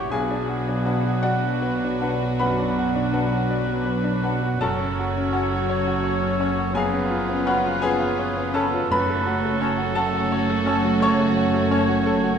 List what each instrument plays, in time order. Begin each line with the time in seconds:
Already playing: grand piano E4 F#4 G4 C#5 E5 F#5 G5, oboe G4, trumpet C#5
0.10 double bass section B1, grand piano B1 G#4 G#5, cello section B2, viola section F#3, french horn section F#3 D4, violin section D4 F#4, oboe G#4, trumpet B4
0.30 grand piano D4
0.49 grand piano F#4
0.68 grand piano D4
0.84 clarinet D4, grand piano B4, flute section F#5
1.04 grand piano F#4
1.22 oboe F#4, grand piano F#4 D5 F#5
1.44 grand piano F#4
1.62 grand piano B4
1.84 grand piano D4
2.01 clarinet D4, grand piano B4, flute section F#5
2.23 grand piano F#4
2.39 grand piano F#2 B4 F#5 B5, oboe B4
2.59 grand piano D4
2.79 grand piano F#4
2.95 grand piano D4
3.12 clarinet D4, grand piano B4, flute section F#5
3.32 grand piano F#4
3.51 grand piano D5
3.68 grand piano F#4
3.85 grand piano B4
4.04 grand piano D4
4.23 clarinet D4, grand piano B4, flute section F#5
4.43 grand piano F#4
4.59 double bass section F#1, cello section F#2, grand piano F#2 A4 F#5 A5, viola section F#3, french horn section F#3 C#4, violin section C#4 F#4, oboe A4, trumpet C#5
4.80 grand piano C#4
4.99 grand piano F#4
5.17 grand piano C#4
5.31 clarinet C#4, grand piano C#5, flute section F#5
5.51 grand piano F#4
5.69 grand piano C#5
5.87 grand piano F#4
6.04 grand piano C#5
6.22 grand piano C#4
6.39 clarinet C#4, grand piano C#5, flute section F#5
6.58 grand piano F#4
6.74 grand piano F#2 G#4 F5 G#5, french horn section F3, viola section B3, violin section F4, oboe G#4, trumpet B4
6.93 grand piano B3
7.11 grand piano F4
7.29 grand piano B3
7.45 clarinet C#4, oboe F#4, grand piano F#4 C#5 F#5, flute section B5
7.64 grand piano F4
7.82 oboe G#4, grand piano G#4 B4 F5 G#5
8.00 grand piano F4
8.19 grand piano C#5
8.38 grand piano B3
8.53 clarinet C#4, oboe A4, grand piano A4 C#5 A5, flute section B5
8.74 grand piano F4
8.89 double bass section F#1, cello section F#2, timpani F#2, grand piano F#2 B4 B5, french horn section F#3 C#4, viola section A3, violin section C#4 F#4, trumpet A4, oboe B4
9.10 grand piano A3
9.26 grand piano F#4
9.44 grand piano A3
9.60 clarinet C#4, grand piano C#5, flute section A5
9.78 grand piano F#4
9.95 grand piano A4 F#5 A5, oboe A4
10.13 grand piano F#4
10.32 grand piano C#5
10.49 grand piano A3
10.65 clarinet C#4, grand piano C#5, flute section A5
10.84 grand piano F#4
11.01 grand piano C#3 C#5 A5 C#6, oboe C#5
11.20 grand piano A3
11.37 grand piano F#4
11.54 grand piano A3
11.70 clarinet C#4, grand piano C#5, flute section A5
11.89 grand piano F#4
12.06 grand piano A4
12.24 grand piano F#4